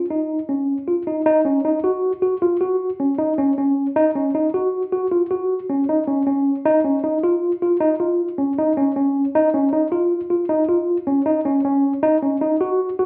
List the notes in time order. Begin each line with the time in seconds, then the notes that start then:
0.10 D#4
0.49 C#4
0.88 F4
1.07 D#4
1.26 D#4
1.45 C#4
1.65 D#4
1.84 F#4
2.22 F#4
2.42 F4
2.61 F#4
3.00 C#4
3.19 D#4
3.38 C#4
3.58 C#4
3.96 D#4
4.15 C#4
4.35 D#4
4.54 F#4
4.92 F#4
5.12 F4
5.31 F#4
5.69 C#4
5.89 D#4
6.08 C#4
6.27 C#4
6.65 D#4
6.84 C#4
7.04 D#4
7.23 F4
7.62 F4
7.80 D#4
8.00 F4
8.38 C#4
8.58 D#4
8.77 C#4
8.96 C#4
9.35 D#4
9.54 C#4
9.73 D#4
9.92 F4
10.30 F4
10.49 D#4
10.69 F4
11.07 C#4
11.26 D#4
11.45 C#4
11.65 C#4
12.03 D#4
12.23 C#4
12.41 D#4
12.61 F#4
12.99 F#4